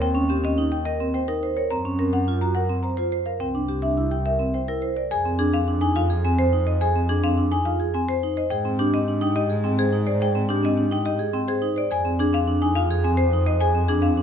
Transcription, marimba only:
0.02 0.20 G5 loud
0.30 0.48 G4 medium
0.45 0.63 D#5 loud
0.72 0.91 G5 medium
0.85 1.05 D#5 medium
1.14 1.33 G5 medium
1.28 1.47 A#4 medium
1.57 1.76 C#5 medium
1.71 1.90 A#5 medium
1.99 2.18 A#4 medium
2.13 2.32 F#5 medium
2.41 2.60 A#5 medium
2.55 2.74 F#5 medium
2.83 3.02 A#5 medium
2.97 3.17 C5 medium
3.26 3.45 F5 medium
3.40 3.59 G5 medium
3.69 3.88 G4 medium
3.82 4.02 E5 medium
4.12 4.30 G5 medium
4.26 4.44 E5 medium
4.54 4.73 G5 medium
4.68 4.87 A#4 medium
4.97 5.15 D5 medium
5.11 5.30 G#5 loud
5.39 5.58 G#4 medium
5.54 5.72 F5 loud
5.81 6.00 G#5 medium
5.96 6.14 F5 loud
6.24 6.43 G#5 medium
6.39 6.57 C5 loud
6.67 6.85 D#5 medium
6.81 6.99 G#5 loud
7.09 7.28 G#4 medium
7.24 7.42 F5 loud
7.52 7.70 G#5 medium
7.65 7.84 F5 loud
7.94 8.12 G#5 medium
8.09 8.27 C5 loud
8.37 8.55 D#5 medium
8.50 8.69 G5 loud
8.79 8.97 G4 medium
8.94 9.12 D#5 loud
9.22 9.40 G5 medium
9.36 9.54 D#5 loud
9.65 9.83 G5 medium
9.79 9.97 G#4 loud
10.07 10.25 D5 medium
10.22 10.39 G5 loud
10.50 10.68 G4 medium
10.65 10.82 D#5 loud
10.92 11.10 G5 medium
11.06 11.24 D#5 loud
11.34 11.52 G5 medium
11.48 11.66 G#4 loud
11.78 11.95 D5 medium
11.92 12.09 G#5 loud
12.20 12.38 G#4 medium
12.34 12.52 F5 loud
12.62 12.80 G#5 medium
12.75 12.94 F5 loud
13.04 13.22 G#5 medium
13.17 13.36 C5 loud
13.46 13.65 D#5 medium
13.61 13.79 G#5 loud
13.88 14.07 G#4 medium
14.02 14.21 F5 loud

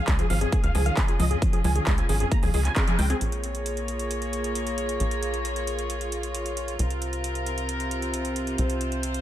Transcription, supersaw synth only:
0.08 0.15 G#4 medium
0.19 0.26 G#4 medium
0.30 0.37 F5 medium
0.41 0.48 G#4 medium
0.52 0.59 G#4 medium
0.64 0.71 F5 medium
0.75 0.82 G#4 medium
0.86 0.93 F5 medium
0.97 1.04 G#4 medium
1.08 1.15 G#4 medium
1.19 1.27 D#5 medium
1.31 1.38 G#4 medium
1.53 1.60 G#4 medium
1.64 1.71 G#5 medium
1.75 1.83 G#4 medium
1.87 1.94 G#4 medium
1.98 2.05 G#5 medium
2.09 2.16 G#4 medium
2.20 2.27 G#4 medium
2.32 2.39 A#5 loud
2.43 2.50 G#4 medium
2.54 2.61 G#4 medium
2.65 2.72 G#5 loud
2.76 2.83 G#4 medium
2.88 2.95 G#4 medium
2.99 3.06 G5 medium
3.10 3.17 G#4 medium

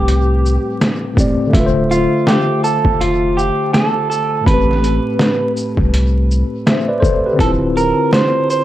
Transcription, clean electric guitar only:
0.00 0.77 G4 medium
1.91 2.28 F4 medium
2.27 2.63 G4 medium
2.64 3.01 A4 medium
3.01 3.38 F4 medium
3.37 3.73 G4 medium
3.73 4.09 A4 loud
4.10 4.46 A4 medium
4.46 5.52 B4 loud
7.41 7.50 A4 medium
7.77 8.13 A#4 medium
8.13 8.49 C5 loud
8.50 8.64 C5 medium

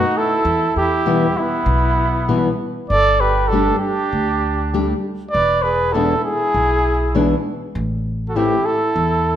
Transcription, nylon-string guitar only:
1.06 1.25 E2 medium
1.06 1.25 B2 medium
1.06 1.25 E3 medium
1.06 1.25 G3 medium
1.06 1.25 B3 medium
1.06 1.25 E4 medium
2.28 2.48 E2 medium
2.28 2.48 B2 medium
2.28 2.48 E3 medium
2.28 2.48 G3 medium
2.28 2.48 B3 medium
2.28 2.48 E4 medium
3.52 3.71 G3 medium
3.52 3.71 A3 medium
3.52 3.71 D4 medium
3.52 3.71 G4 medium
4.74 4.92 G3 medium
4.74 4.92 A3 medium
4.74 4.93 D4 medium
4.74 4.93 G4 medium
5.94 6.13 E2 medium
5.94 6.13 B2 medium
5.94 6.13 E3 medium
5.94 6.13 G#3 medium
5.94 6.13 D4 medium
5.94 6.14 E4 medium
7.15 7.33 E2 medium
7.15 7.33 B2 medium
7.15 7.33 E3 medium
7.15 7.34 G#3 medium
7.15 7.34 D4 medium
7.15 7.34 E4 medium
8.36 8.54 A2 medium
8.36 8.54 E3 medium
8.36 8.55 A3 medium
8.36 8.55 C4 medium
8.36 8.55 E4 medium

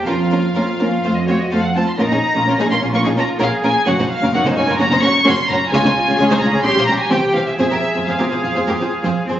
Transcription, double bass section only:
0.07 0.50 F2 medium
0.55 0.98 F2 medium
1.04 1.46 F2 medium
1.51 1.94 F2 medium
1.99 2.04 A#1 medium
2.11 2.16 A#1 soft
2.35 2.40 A#1 medium
2.47 2.51 A#1 medium
2.58 2.63 A#1 soft
2.70 2.75 A#1 medium
2.82 2.87 A#1 soft
2.94 2.98 A#1 medium
3.06 3.11 A#1 soft
3.17 3.22 A#1 soft
3.40 3.45 A#1 medium
3.64 3.69 A#1 soft
3.87 3.92 F#1 medium
3.99 4.04 F#1 medium
4.22 4.27 F#1 medium
4.33 4.38 F#1 medium
4.44 4.49 F#1 medium
4.56 4.61 F#1 medium
4.67 4.72 F#1 medium
4.79 4.84 F#1 medium
4.91 4.96 F#1 medium
5.02 5.07 F#1 medium
5.26 5.31 F#1 medium
5.49 5.54 F#1 medium
5.72 5.77 C#2 loud
5.83 5.88 C#2 medium
6.07 6.11 C#2 medium
6.18 6.23 C#2 medium
6.30 6.34 C#2 medium
6.41 6.45 C#2 medium
6.53 6.57 C#2 medium
6.64 6.68 A#1 loud
6.75 6.80 A#1 medium
6.88 6.92 A#1 medium
7.11 7.16 C2 medium
7.34 7.39 C2 medium
7.59 7.63 F2 medium
7.71 7.75 F2 medium
7.95 8.00 F2 soft
8.07 8.12 F2 medium
8.19 8.24 F2 soft
8.31 8.36 F2 medium
8.43 8.48 F2 soft
8.55 8.60 F2 medium
8.68 8.72 F2 soft
8.80 8.85 F2 soft
9.04 9.08 F2 medium
9.28 9.33 F2 soft

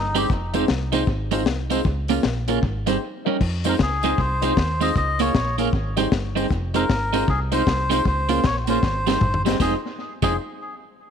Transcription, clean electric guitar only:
0.15 0.25 G3 medium
0.15 0.25 C4 medium
0.15 0.25 D#4 medium
0.54 0.64 G#3 medium
0.54 0.64 C4 medium
0.54 0.64 D#4 loud
0.92 1.02 G#3 medium
0.92 1.03 C4 loud
0.92 1.03 D#4 loud
1.31 1.41 G#3 medium
1.31 1.42 C4 medium
1.31 1.42 D#4 medium
1.70 1.80 G#3 medium
1.70 1.80 C4 medium
1.70 1.81 D#4 medium
2.10 2.19 A#3 medium
2.10 2.19 C#4 medium
2.10 2.20 F4 loud
2.49 2.58 A#3 medium
2.49 2.58 C#4 medium
2.49 2.59 F4 medium
2.87 2.96 G3 loud
2.87 2.97 C4 medium
2.87 2.97 D#4 medium
3.26 3.36 G3 medium
3.26 3.36 C#4 medium
3.26 3.36 D#4 medium
3.65 3.74 G#3 medium
3.65 3.75 C4 medium
3.65 3.75 D#4 loud
4.04 4.13 G#3 medium
4.04 4.13 C4 medium
4.04 4.14 D#4 medium
4.19 muted clean electric guitar stroke soft
4.43 4.52 G#3 medium
4.43 4.52 C4 medium
4.43 4.52 D#4 medium
4.81 4.90 G#3 medium
4.81 4.91 C4 medium
4.81 4.91 D#4 medium
5.20 5.29 A#3 medium
5.20 5.30 C#4 medium
5.20 5.30 F4 medium
5.58 5.68 A#3 medium
5.58 5.68 C#4 medium
5.58 5.68 F4 loud
5.97 6.07 G3 medium
5.97 6.07 C4 medium
5.97 6.07 D#4 loud
6.36 6.45 G3 medium
6.36 6.46 C4 medium
6.36 6.46 D#4 medium
6.74 6.84 G#3 medium
6.74 6.84 C4 medium
6.74 6.84 D#4 loud
7.13 7.23 G#3 medium
7.13 7.23 C4 medium
7.13 7.23 D#4 loud
7.28 muted clean electric guitar stroke soft
7.52 7.61 G#3 medium
7.52 7.62 C4 medium
7.52 7.62 D#4 medium
7.90 8.00 G#3 medium
7.90 8.00 C4 medium
7.90 8.00 D#4 medium
8.29 8.39 A#3 medium
8.29 8.39 C#4 medium
8.29 8.39 F4 medium
8.68 8.77 A#3 medium
8.68 8.78 C#4 medium
8.68 8.78 F4 medium
9.07 9.16 G3 medium
9.07 9.17 C4 medium
9.07 9.17 D#4 loud
9.45 9.55 G3 medium
9.45 9.55 C4 medium
9.45 9.56 D#4 medium
9.60 9.74 G#3 medium
9.60 9.75 C4 medium
9.60 9.75 D#4 medium
10.23 10.31 G#3 medium
10.23 10.32 C4 medium
10.23 10.32 D#4 medium

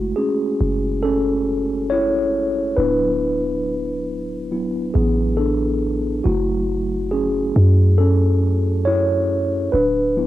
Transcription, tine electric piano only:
0.00 0.56 G#3 medium
0.00 0.13 A3 medium
0.00 0.57 E4 medium
0.00 0.13 F#4 medium
0.16 1.00 C#4 medium
0.16 1.06 G#4 medium
1.03 1.87 C#4 medium
1.03 1.93 A4 medium
1.90 2.74 E4 medium
1.90 2.80 C#5 loud
2.77 3.35 F#3 medium
2.77 3.36 B3 soft
2.77 4.48 D4 medium
2.77 3.36 E4 medium
2.77 4.47 B4 medium
4.51 4.91 F#3 soft
4.51 4.91 B3 soft
4.51 4.91 E4 medium
4.94 5.36 B3 medium
4.94 5.35 G#4 medium
5.37 6.22 D4 medium
5.37 6.27 A4 medium
6.24 9.69 F#3 medium
6.24 7.09 A3 medium
6.24 8.86 E4 medium
6.24 7.14 F#4 medium
7.11 7.96 C#4 medium
7.11 7.95 G#4 medium
7.98 8.83 C#4 medium
7.98 8.88 A4 medium
8.85 9.70 E4 medium
8.85 9.75 C#5 loud
9.72 10.27 D4 medium
9.72 10.27 B4 medium
10.17 10.27 F#3 medium
10.17 10.27 B3 soft
10.17 10.27 E4 medium

